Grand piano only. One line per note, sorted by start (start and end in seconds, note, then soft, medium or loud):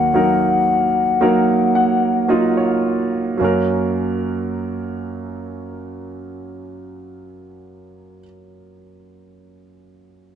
0.00 3.37 D#2 soft
0.00 3.37 D#3 soft
0.00 0.14 F#3 medium
0.00 0.14 A#3 medium
0.00 0.15 D#4 soft
0.00 0.16 A#4 medium
0.14 1.15 F#3 soft
0.14 1.15 A#3 soft
0.14 1.16 D#4 soft
0.14 1.16 A#4 medium
1.21 2.24 F#3 medium
1.21 2.24 A#3 medium
1.21 2.25 D#4 medium
1.21 2.25 A#4 medium
1.75 2.26 F#5 medium
2.28 3.34 F#3 medium
2.28 3.35 A#3 medium
2.28 3.35 D#4 soft
2.28 3.35 F4 medium
2.28 2.55 D#5 soft
2.57 3.37 C#5 soft
3.37 8.21 F#2 soft
3.37 8.18 F#3 medium
3.37 8.20 A#3 soft
3.42 8.22 C#4 soft
3.42 8.25 A#4 medium